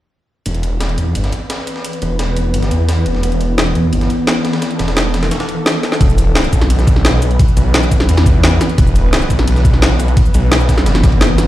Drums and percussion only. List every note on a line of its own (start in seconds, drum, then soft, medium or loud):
0.46 closed hi-hat medium
0.46 ride medium
0.54 closed hi-hat soft
0.63 closed hi-hat medium
0.63 ride medium
0.80 snare loud
0.80 closed hi-hat medium
0.80 ride medium
0.89 ride soft
0.98 closed hi-hat medium
0.98 ride medium
1.15 closed hi-hat medium
1.15 ride medium
1.24 snare medium
1.24 closed hi-hat soft
1.32 closed hi-hat medium
1.32 ride medium
1.50 snare loud
1.50 closed hi-hat medium
1.50 ride medium
1.59 snare soft
1.67 closed hi-hat medium
1.67 ride medium
1.76 snare medium
1.85 closed hi-hat medium
1.85 ride medium
1.93 closed hi-hat soft
2.02 closed hi-hat medium
2.02 ride medium
2.19 snare loud
2.19 closed hi-hat medium
2.19 ride medium
2.37 closed hi-hat medium
2.37 ride medium
2.54 closed hi-hat medium
2.54 ride medium
2.63 snare medium
2.63 closed hi-hat soft
2.71 closed hi-hat medium
2.71 ride medium
2.89 snare loud
2.89 closed hi-hat medium
2.89 open hi-hat medium
3.06 closed hi-hat medium
3.06 ride medium
3.15 snare soft
3.23 closed hi-hat medium
3.23 ride medium
3.32 closed hi-hat soft
3.41 closed hi-hat medium
3.41 ride medium
3.58 snare loud
3.58 closed hi-hat medium
3.58 ride medium
3.67 ride soft
3.75 closed hi-hat medium
3.75 ride medium
3.93 closed hi-hat medium
3.93 ride medium
4.01 snare medium
4.01 closed hi-hat soft
4.10 closed hi-hat medium
4.10 ride medium
4.27 snare loud
4.27 closed hi-hat medium
4.27 ride medium
4.36 snare soft
4.45 snare loud
4.45 closed hi-hat medium
4.45 ride medium
4.53 snare loud
4.53 ride medium
4.62 snare loud
4.62 closed hi-hat medium
4.62 ride medium
4.71 closed hi-hat soft
4.79 snare loud
4.79 closed hi-hat medium
4.79 ride medium
4.88 snare loud
4.88 ride medium
4.97 snare loud
4.97 closed hi-hat medium
4.97 ride medium
5.14 snare loud
5.14 closed hi-hat medium
5.14 ride medium
5.23 snare soft
5.23 snare loud
5.23 ride medium
5.31 snare loud
5.31 closed hi-hat medium
5.31 ride medium
5.40 snare loud
5.40 closed hi-hat soft
5.40 ride medium
5.49 closed hi-hat medium
5.49 ride medium
5.66 snare loud
5.66 closed hi-hat medium
5.66 open hi-hat medium
5.83 snare medium
5.83 closed hi-hat medium
5.83 ride medium
5.92 snare medium
6.01 kick loud
6.01 closed hi-hat loud
6.01 ride medium
6.09 cabasa soft
6.18 closed hi-hat medium
6.18 ride medium
6.18 cabasa medium
6.35 snare loud
6.35 closed hi-hat loud
6.35 ride medium
6.44 ride soft
6.44 cabasa soft
6.53 kick medium
6.53 closed hi-hat medium
6.53 ride medium
6.53 cabasa medium
6.61 snare soft
6.61 closed hi-hat soft
6.70 closed hi-hat loud
6.70 ride medium
6.79 snare medium
6.79 cabasa soft
6.87 kick loud
6.87 closed hi-hat medium
6.87 ride medium
6.87 cabasa medium
6.96 snare soft
7.05 snare loud
7.05 closed hi-hat loud
7.05 ride medium
7.13 snare soft
7.22 closed hi-hat medium
7.22 ride medium
7.22 cabasa medium
7.31 closed hi-hat soft
7.39 kick loud
7.39 closed hi-hat medium
7.39 ride medium
7.48 cabasa soft
7.57 closed hi-hat medium
7.57 ride medium
7.57 cabasa medium
7.74 snare loud
7.74 closed hi-hat medium
7.74 ride medium
7.83 cabasa soft
7.91 kick medium
7.91 closed hi-hat medium
7.91 ride medium
7.91 cabasa medium
8.00 snare soft
8.00 snare medium
8.00 closed hi-hat soft
8.09 closed hi-hat loud
8.09 ride medium
8.17 snare medium
8.17 closed hi-hat soft
8.17 cabasa soft
8.26 kick loud
8.26 closed hi-hat medium
8.26 ride medium
8.26 cabasa medium
8.43 snare loud
8.43 closed hi-hat loud
8.43 open hi-hat medium
8.61 snare medium
8.61 closed hi-hat medium
8.61 ride medium
8.61 cabasa medium
8.70 closed hi-hat soft
8.78 kick loud
8.78 closed hi-hat medium
8.78 ride medium
8.87 cabasa soft
8.95 closed hi-hat medium
8.95 ride medium
8.95 cabasa medium
9.13 snare loud
9.13 closed hi-hat medium
9.13 ride medium
9.22 ride soft
9.22 cabasa soft
9.30 kick medium
9.30 closed hi-hat medium
9.30 ride medium
9.30 cabasa medium
9.39 snare soft
9.39 closed hi-hat soft
9.48 closed hi-hat medium
9.48 ride medium
9.56 snare medium
9.56 cabasa soft
9.65 kick loud
9.65 closed hi-hat medium
9.65 ride medium
9.65 cabasa medium
9.74 snare soft
9.82 snare loud
9.82 closed hi-hat medium
9.82 ride medium
9.91 snare soft
10.00 closed hi-hat medium
10.00 ride medium
10.00 cabasa medium
10.08 closed hi-hat soft
10.17 kick loud
10.17 closed hi-hat medium
10.17 ride medium
10.26 cabasa soft
10.34 closed hi-hat medium
10.34 ride medium
10.34 cabasa medium
10.52 snare loud
10.52 closed hi-hat medium
10.52 ride medium
10.60 cabasa soft
10.69 kick medium
10.69 snare loud
10.69 closed hi-hat medium
10.69 ride medium
10.69 cabasa medium
10.78 snare soft
10.78 closed hi-hat soft
10.86 snare loud
10.86 closed hi-hat medium
10.86 ride medium
10.95 snare medium
10.95 closed hi-hat soft
10.95 cabasa soft
11.04 kick loud
11.04 snare loud
11.04 closed hi-hat medium
11.04 ride medium
11.04 cabasa medium
11.12 ride soft
11.21 snare loud
11.21 closed hi-hat medium
11.21 ride medium
11.38 snare medium
11.38 closed hi-hat medium
11.38 ride medium
11.38 cabasa medium